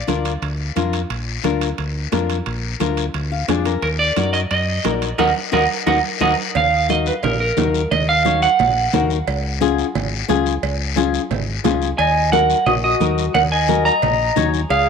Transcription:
Already playing: clean electric guitar D5
0.07 fingered electric bass D2, nylon-string guitar D4 F4 A#4, high conga, high timbale, short guiro
0.25 high timbale, short guiro
0.42 fingered electric bass D2, high conga, high timbale, long guiro
0.76 fingered electric bass F2, nylon-string guitar D4 F4 A#4, high conga, high timbale, short guiro
0.93 high timbale, short guiro
1.10 fingered electric bass A#1, high conga, high timbale, long guiro
1.44 fingered electric bass D2, nylon-string guitar D4 F4 A#4, high conga, high timbale, short guiro
1.61 high timbale, short guiro
1.78 fingered electric bass D2, high conga, high timbale, long guiro
2.12 fingered electric bass F2, nylon-string guitar D4 F4 A#4, high conga, high timbale, low timbale, short guiro
2.30 high timbale, short guiro
2.46 fingered electric bass A#1, high conga, high timbale, long guiro
2.80 fingered electric bass D2, nylon-string guitar D4 F4 A#4, high conga, high timbale, short guiro
2.97 high timbale, short guiro
3.14 fingered electric bass D2, high conga, high timbale, long guiro
3.32 nylon-string guitar F5
3.48 fingered electric bass F2, nylon-string guitar D4 F4 G#4 D5, high conga, high timbale, low timbale, short guiro
3.65 nylon-string guitar A#4, high timbale, short guiro
3.82 fingered electric bass D#2, clean electric guitar A#4, high conga, high timbale, long guiro
3.99 clean electric guitar D5
4.16 fingered electric bass F#2, nylon-string guitar D#4 F#4 A#4, high conga, high timbale, short guiro
4.33 clean electric guitar D#5, high timbale, short guiro
4.51 fingered electric bass F#2, clean electric guitar D#5, high conga, high timbale, long guiro
4.84 fingered electric bass A#1, nylon-string guitar D#4 F#4 A#4, high conga, high timbale, low timbale, short guiro
4.92 clean electric guitar D5
5.02 high timbale, short guiro
5.18 fingered electric bass D#2, nylon-string guitar D#4 F#4 A#4, clean electric guitar A#4 D#5 F#5, high conga, high timbale, long guiro
5.52 fingered electric bass D#2, nylon-string guitar D#4 F#4 A#4, clean electric guitar A#4 D#5 F#5, high conga, high timbale, long guiro
5.86 fingered electric bass D#2, nylon-string guitar D#4 F#4 A#4, clean electric guitar A#4 D#5 F#5, high conga, high timbale
6.20 fingered electric bass D#2, nylon-string guitar D#4 F#4 A#4, clean electric guitar A#4 D#5 F#5, high conga, high timbale, long guiro
6.55 fingered electric bass D#2, clean electric guitar F5, cowbell, high conga, low conga, long guiro
6.89 nylon-string guitar D#4 F#4 A#4, clean electric guitar D#5, high conga, short guiro
7.06 clean electric guitar B4, short guiro
7.23 fingered electric bass A#1, clean electric guitar A#4, cowbell, high conga, low conga, long guiro
7.40 clean electric guitar A#4
7.57 fingered electric bass D#2, nylon-string guitar D#4 F#4 A#4, high conga, low conga, low timbale, short guiro
7.74 short guiro
7.91 fingered electric bass D#2, clean electric guitar D#5, cowbell, high conga, low conga, long guiro
8.09 clean electric guitar F5
8.25 nylon-string guitar D#4 F#4 C#5, high conga, short guiro
8.42 clean electric guitar F#5, short guiro
8.59 fingered electric bass A#1, cowbell, high conga, low conga, long guiro
8.93 fingered electric bass D#2, nylon-string guitar D#4 F#4 A#4, high conga, low conga, low timbale, short guiro
9.10 short guiro
9.27 fingered electric bass C#2, cowbell, high conga, long guiro
9.61 nylon-string guitar C#4 F4 G#4, high conga, short guiro
9.79 short guiro
9.95 fingered electric bass G#1, cowbell, high conga, low conga, long guiro
10.28 fingered electric bass C#2, nylon-string guitar C#4 F4 G#4, high conga, low timbale, short guiro
10.46 short guiro
10.63 fingered electric bass C#2, cowbell, high conga, long guiro
10.96 nylon-string guitar C#4 F4 G#4, high conga, short guiro
11.14 short guiro
11.30 fingered electric bass G#1, cowbell, high conga, low conga, long guiro
11.64 fingered electric bass C#2, nylon-string guitar C#4 F4 G#4, high conga, low conga, low timbale, short guiro
11.82 short guiro
11.98 fingered electric bass D#2, clarinet D#5, clean electric guitar G#5, cowbell, high conga, long guiro
12.32 nylon-string guitar D#4 F#4 A#4, clarinet A#4, clean electric guitar F#5, high conga, short guiro
12.50 short guiro
12.66 fingered electric bass A#1, clarinet F#4, clean electric guitar D#5, cowbell, high conga, low conga, long guiro
12.84 clarinet F#4, clean electric guitar D#5
13.00 fingered electric bass D#2, nylon-string guitar D#4 F#4 A#4, high conga, short guiro
13.18 short guiro
13.34 fingered electric bass D#2, clarinet A#4, clean electric guitar F#5, cowbell, high conga, low conga, long guiro
13.52 clarinet D#5, clean electric guitar G#5
13.68 nylon-string guitar D#4 F#4 A#4, high conga, short guiro
13.85 clarinet D#5, clean electric guitar A#5, short guiro
14.02 fingered electric bass A#1, cowbell, high conga, low conga, long guiro
14.36 fingered electric bass D#2, nylon-string guitar D#4 F#4 C#5, high conga, low conga, short guiro
14.54 short guiro
14.70 fingered electric bass C#2, clarinet G#4, clean electric guitar F5, cowbell, high conga, long guiro

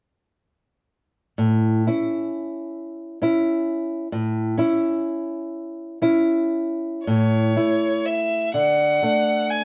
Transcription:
1.38 nylon-string guitar A2
1.87 nylon-string guitar C#4 E4
3.22 nylon-string guitar C#4 E4
4.12 nylon-string guitar A2
4.58 nylon-string guitar C#4 E4
6.02 nylon-string guitar C#4 E4
7.07 nylon-string guitar A2, violin C#5
7.56 nylon-string guitar A3 E4
8.06 violin E5
8.54 nylon-string guitar D3, violin F#5
9.02 nylon-string guitar A3 D4
9.49 violin G#5

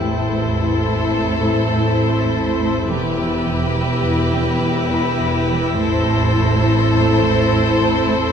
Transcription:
Already playing: synth drone E2, viola section E4, harp E4 E5, synth texture E5
0.01 double bass section A1, cello section A2, french horn section C4 A4, violin section A4 C5, synth texture A4 C5, harp G5
0.31 cello section A2
0.59 cello section A2
0.88 cello section A3
1.17 cello section A3
1.45 cello section A2
1.75 cello section A2
2.03 cello section A2
2.32 cello section A3
2.61 cello section A3
2.89 double bass section E1, cello section E2, synth drone E2, french horn section B3 G4, viola section E4, synth texture G4 B4 E5, violin section G4 B4 E6
3.19 cello section E2
3.48 cello section E2, violin section A#6
3.76 cello section E3
4.05 cello section E3
4.34 cello section E2
4.62 cello section E2
4.92 cello section E2, harp B5
5.20 cello section E3
5.48 cello section E3
5.77 double bass section A1, cello section A2, french horn section C4 A4, synth texture A4 C5, violin section A4 C5
6.06 cello section A2
6.35 cello section A2
6.65 cello section A3
6.94 cello section A3
7.22 cello section A2
7.51 cello section A2
7.81 cello section A2
8.09 cello section A3

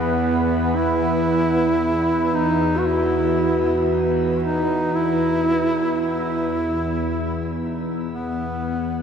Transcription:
Already playing: synth drone E2, ambient pad E3 B3 B4, duduk B3
0.76 duduk E4
2.34 duduk D#4
2.75 bronze metallophone F#4, duduk F#4
2.87 duduk E4
4.43 duduk D#4
4.95 duduk E4
6.01 duduk E4
8.12 duduk B3

